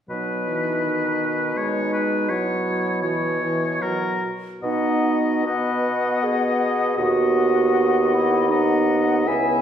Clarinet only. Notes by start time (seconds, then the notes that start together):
0.10 D#4
1.58 D#4
2.30 E4
3.04 F#4
3.84 F#4
4.64 D#4
5.46 B4
6.24 G#4
6.98 F#4
8.12 E4
8.49 D#4
9.25 E4